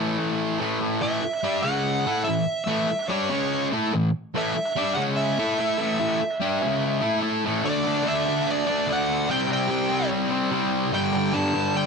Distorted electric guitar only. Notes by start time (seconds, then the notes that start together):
Already playing: A2 A3
0.00 E3
0.59 A2 E3 A3
0.80 E3 A3
1.02 A2 E3 A3
1.22 muted distorted electric guitar stroke
1.43 G3 D4 G4
1.64 C#3 G#3 C#4
2.07 A3 E4 A4
2.26 A2 E3
2.66 A2 E3 A3
2.88 muted distorted electric guitar stroke
3.09 G3 D4 G4
3.29 C#3 G#3 C#4
3.72 A3 E4 A4
3.93 A2 E3
4.35 A2 E3 A3
4.55 muted distorted electric guitar stroke
4.76 G3 D4 G4
4.96 C#3 G#3 C#4
5.39 A3 E4 A4
5.59 A3 E4 A4
5.78 A2 E3 A3
5.99 A2 E3 A3
6.20 muted distorted electric guitar stroke
6.40 G3 D4 G4
6.62 C#3 G#3 C#4
7.02 A3 E4 A4
7.22 A3 E4 A4
7.44 A2 E3 A3
7.64 D3 A3 D4
7.84 A3 D4
8.03 D3 A3 D4
8.25 A3 D4
8.67 A3 D4
8.87 D3 A3
8.91 D4
9.29 C3 G3 C4
9.48 G3 C4
9.68 C3 G3 C4
9.89 G3 C4
10.30 G3 C4
10.51 C3 G3 C4
10.91 G2 D3 G3
11.13 D3 G3
11.33 G2 D3 G3
11.54 D3 G3